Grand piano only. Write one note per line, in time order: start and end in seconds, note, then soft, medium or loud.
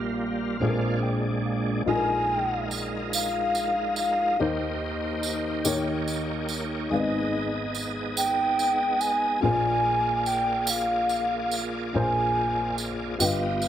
0.00 0.57 A#1 medium
0.00 0.57 A#2 medium
0.00 0.61 A#3 medium
0.00 0.61 D#4 medium
0.00 0.61 G4 medium
0.00 0.62 A#4 medium
0.61 1.83 A#1 medium
0.61 1.83 A#2 medium
0.61 1.87 C4 medium
0.61 1.87 D4 medium
0.61 1.86 G#4 medium
0.61 0.68 A4 medium
0.68 1.91 A#4 medium
1.03 1.42 G5 medium
1.46 1.84 F5 soft
1.85 4.35 A#1 medium
1.85 4.35 A#2 medium
1.85 4.34 D#4 medium
1.85 4.35 F4 medium
1.85 4.36 G#4 medium
1.85 1.95 A4 medium
1.96 4.39 A#4 medium
4.39 5.62 D#2 medium
4.39 5.62 D#3 medium
4.39 5.63 D#4 medium
4.39 5.64 G4 medium
4.39 5.64 A#4 medium
4.39 5.66 C5 medium
5.64 6.87 D#2 medium
5.64 6.87 D#3 medium
5.64 6.88 D#4 medium
5.64 6.91 G4 medium
5.64 6.91 A#4 medium
5.64 6.92 C#5 medium
6.89 9.39 G#1 medium
6.89 9.39 G#2 medium
6.89 9.38 D#4 medium
6.89 9.38 G#4 medium
6.89 9.39 B4 medium
6.94 6.99 D5 medium
7.00 9.43 D#5 medium
9.41 11.90 A#1 medium
9.41 11.90 A#2 medium
9.41 11.89 F4 medium
9.41 11.90 G#4 medium
9.41 11.90 A#4 medium
9.45 9.50 C5 medium
9.51 11.94 D5 medium
11.93 13.16 A#1 medium
11.93 13.16 A#2 medium
11.93 13.17 F4 medium
11.93 13.20 G#4 medium
11.93 13.20 A#4 medium
11.93 13.20 C5 medium
13.18 13.68 G1 medium
13.18 13.68 G2 medium
13.18 13.68 F4 medium
13.18 13.68 G4 medium
13.18 13.68 B4 medium
13.18 13.68 D#5 medium